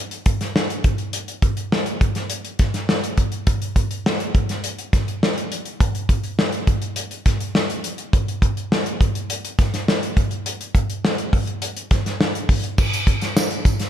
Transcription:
0.11 closed hi-hat soft
0.26 kick medium
0.26 closed hi-hat medium
0.41 snare soft
0.41 closed hi-hat soft
0.56 snare medium
0.70 closed hi-hat soft
0.84 kick loud
0.84 closed hi-hat medium
0.98 closed hi-hat soft
1.13 closed hi-hat medium
1.28 closed hi-hat medium
1.42 kick medium
1.42 closed hi-hat medium
1.57 closed hi-hat soft
1.72 snare loud
1.86 closed hi-hat soft
2.01 kick medium
2.01 closed hi-hat medium
2.15 snare soft
2.15 closed hi-hat soft
2.30 closed hi-hat medium
2.45 closed hi-hat soft
2.59 kick medium
2.59 snare soft
2.59 closed hi-hat medium
2.74 snare soft
2.74 closed hi-hat soft
2.89 snare medium
3.04 closed hi-hat soft
3.17 kick medium
3.17 closed hi-hat medium
3.32 closed hi-hat soft
3.47 kick loud
3.47 closed hi-hat medium
3.62 closed hi-hat medium
3.76 kick medium
3.76 closed hi-hat medium
3.91 closed hi-hat soft
4.06 snare loud
4.20 closed hi-hat soft
4.35 kick medium
4.35 closed hi-hat medium
4.49 snare soft
4.49 closed hi-hat soft
4.64 closed hi-hat medium
4.79 closed hi-hat soft
4.93 kick medium
4.93 snare soft
4.93 closed hi-hat medium
5.08 closed hi-hat soft
5.23 snare medium
5.38 closed hi-hat soft
5.52 closed hi-hat medium
5.65 closed hi-hat soft
5.80 kick loud
5.80 closed hi-hat medium
5.95 closed hi-hat soft
6.09 kick medium
6.09 closed hi-hat medium
6.23 closed hi-hat soft
6.39 snare loud
6.52 closed hi-hat soft
6.67 kick medium
6.67 closed hi-hat medium
6.82 closed hi-hat soft
6.96 closed hi-hat medium
7.11 closed hi-hat soft
7.26 kick medium
7.26 snare soft
7.26 closed hi-hat medium
7.40 closed hi-hat soft
7.55 snare medium
7.70 closed hi-hat medium
7.84 closed hi-hat medium
7.98 closed hi-hat soft
8.13 kick loud
8.13 closed hi-hat medium
8.28 closed hi-hat soft
8.42 kick medium
8.42 closed hi-hat medium
8.57 closed hi-hat soft
8.72 snare loud
8.86 closed hi-hat soft
9.01 kick medium
9.01 closed hi-hat medium
9.15 closed hi-hat soft
9.30 closed hi-hat medium
9.45 closed hi-hat medium
9.59 kick medium
9.59 snare soft
9.59 closed hi-hat medium
9.74 snare soft
9.74 closed hi-hat soft
9.88 snare medium
10.03 closed hi-hat medium
10.17 kick loud
10.17 closed hi-hat medium
10.31 closed hi-hat soft
10.46 closed hi-hat medium
10.61 closed hi-hat soft
10.75 kick medium
10.75 closed hi-hat medium
10.90 closed hi-hat soft
11.05 snare loud
11.18 closed hi-hat soft
11.33 kick medium
11.33 open hi-hat medium
11.47 closed hi-hat soft
11.62 closed hi-hat medium
11.77 closed hi-hat medium
11.91 kick medium
11.91 snare soft
11.91 closed hi-hat medium
12.06 snare soft
12.06 closed hi-hat soft
12.21 snare medium
12.35 closed hi-hat soft
12.49 kick medium
12.49 open hi-hat medium
12.63 closed hi-hat soft
12.78 kick loud
12.78 crash medium
12.78 tambourine soft
12.93 closed hi-hat soft
12.93 tambourine medium
13.07 kick medium
13.07 closed hi-hat medium
13.21 snare soft
13.21 closed hi-hat medium
13.21 tambourine soft
13.37 snare loud
13.37 tambourine medium
13.50 closed hi-hat medium
13.65 kick medium
13.65 closed hi-hat medium
13.65 tambourine soft
13.80 snare soft
13.80 closed hi-hat soft
13.80 tambourine soft

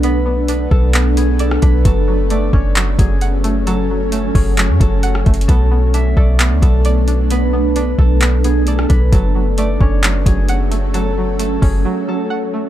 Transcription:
0.00 0.67 B1 loud
0.00 9.08 A3 medium
0.00 1.82 B3 medium
0.00 0.25 B3 loud
0.00 0.47 D4 medium
0.00 1.82 D4 medium
0.00 0.26 A4 medium
0.00 0.72 A4 medium
0.00 0.48 B4 medium
0.00 0.74 D5 medium
0.00 0.94 D5 medium
0.00 0.39 E5 medium
0.00 closed hi-hat medium
0.26 0.93 B3 medium
0.48 1.61 D4 loud
0.48 1.61 B4 medium
0.48 closed hi-hat medium
0.71 1.59 B1 loud
0.71 1.85 A4 medium
0.71 1.23 A4 medium
0.71 kick loud
0.94 1.16 B3 medium
0.94 clap loud
0.94 closed hi-hat medium
1.17 1.85 B3 medium
1.17 1.46 G#4 medium
1.17 closed hi-hat medium
1.39 1.84 A4 medium
1.39 1.85 D5 medium
1.39 closed hi-hat medium
1.51 cross-stick loud
1.62 1.84 B1 loud
1.62 1.85 D4 medium
1.62 3.67 B4 medium
1.62 kick loud
1.62 closed hi-hat medium
1.85 2.51 F#1 loud
1.85 5.45 F#3 medium
1.85 2.07 F#3 medium
1.85 5.45 C#4 loud
1.85 3.05 A4 loud
1.85 kick loud
1.85 closed hi-hat medium
2.08 2.75 F#3 medium
2.30 3.43 A3 loud
2.30 2.59 D5 medium
2.30 closed hi-hat medium
2.53 2.97 F#1 loud
2.53 3.90 C#4 medium
2.53 4.45 C#5 medium
2.53 kick loud
2.76 2.97 F#3 medium
2.76 clap loud
2.76 closed hi-hat medium
2.99 4.31 F#1 loud
2.99 3.66 F#3 medium
2.99 3.73 G#4 medium
2.99 kick loud
2.99 closed hi-hat medium
3.21 4.58 F#5 medium
3.21 closed hi-hat medium
3.44 4.11 A3 medium
3.44 closed hi-hat medium
3.67 3.89 F#3 loud
3.67 4.12 A4 loud
3.67 closed hi-hat medium
3.90 4.57 F#3 medium
4.12 5.26 A3 medium
4.12 4.41 A4 medium
4.12 closed hi-hat medium
4.35 4.71 F#1 loud
4.35 5.49 C#4 medium
4.35 4.87 G#4 medium
4.35 kick medium
4.35 open hi-hat medium
4.58 4.79 F#3 loud
4.58 clap loud
4.58 closed hi-hat medium
4.69 4.80 F#2 loud
4.80 5.24 F#1 loud
4.80 5.49 F#3 medium
4.80 5.47 A4 medium
4.80 kick loud
4.80 closed hi-hat medium
5.03 5.49 F#5 medium
5.03 closed hi-hat medium
5.15 cross-stick loud
5.26 5.48 F#1 loud
5.26 5.49 A3 medium
5.26 kick loud
5.26 closed hi-hat soft
5.34 closed hi-hat medium
5.41 closed hi-hat medium
5.48 6.14 B1 loud
5.48 9.09 B3 medium
5.48 5.70 B3 medium
5.48 9.09 D4 medium
5.48 6.62 A4 loud
5.48 kick loud
5.48 closed hi-hat medium
5.71 6.38 B3 medium
5.94 7.07 D4 medium
5.94 7.66 E5 loud
5.94 closed hi-hat medium
6.17 6.53 B1 loud
6.17 7.53 A4 medium
6.17 8.01 D5 medium
6.17 kick medium
6.39 6.61 B3 medium
6.39 clap loud
6.39 closed hi-hat medium
6.51 6.62 D2 loud
6.62 7.95 B1 loud
6.62 7.30 B3 medium
6.62 8.00 A4 medium
6.62 kick loud
6.62 closed hi-hat medium
6.85 8.22 D5 medium
6.85 closed hi-hat medium
7.08 7.75 D4 medium
7.08 closed hi-hat medium
7.30 7.52 B3 loud
7.30 7.76 B4 medium
7.30 closed hi-hat medium
7.53 8.21 B3 medium
7.76 8.88 D4 medium
7.76 8.89 B4 medium
7.76 closed hi-hat medium
7.99 8.86 B1 loud
7.99 9.12 A4 medium
7.99 8.51 A4 medium
7.99 kick loud
8.21 8.43 B3 medium
8.21 clap loud
8.21 closed hi-hat medium
8.44 9.12 B3 medium
8.44 8.73 G#4 medium
8.44 closed hi-hat medium
8.67 9.12 A4 medium
8.67 9.13 D5 medium
8.67 closed hi-hat medium
8.79 cross-stick loud
8.89 9.12 B1 loud
8.89 9.12 D4 medium
8.89 10.94 B4 medium
8.89 kick loud
8.89 closed hi-hat medium
9.12 9.78 F#1 loud
9.12 12.69 F#3 medium
9.12 9.34 F#3 loud
9.12 12.69 A3 medium
9.12 12.69 C#4 medium
9.12 10.32 A4 loud
9.12 kick loud
9.12 closed hi-hat medium
9.35 10.02 F#3 medium
9.58 10.70 A3 loud
9.58 9.87 D5 medium
9.58 closed hi-hat medium
9.81 10.24 F#1 loud
9.81 11.17 C#4 medium
9.81 11.72 C#5 medium
9.81 kick medium
10.03 10.25 F#3 medium
10.03 clap loud
10.03 closed hi-hat medium
10.26 11.58 F#1 loud
10.26 10.93 F#3 medium
10.26 11.00 G#4 medium
10.26 kick loud
10.26 closed hi-hat medium
10.49 11.85 F#5 medium
10.49 closed hi-hat medium
10.71 11.38 A3 medium
10.71 closed hi-hat medium
10.94 11.16 F#3 medium
10.94 11.39 A4 loud
10.94 closed hi-hat medium
11.18 11.84 F#3 medium
11.39 12.52 A3 medium
11.39 11.69 A4 medium
11.39 closed hi-hat medium
11.62 11.85 F#1 loud
11.62 12.69 C#4 medium
11.62 12.14 G#4 medium
11.62 kick loud
11.62 open hi-hat medium
11.85 12.07 F#3 medium
12.08 12.69 F#3 medium
12.08 12.69 A4 medium
12.30 12.69 F#5 medium
12.54 12.69 A3 medium

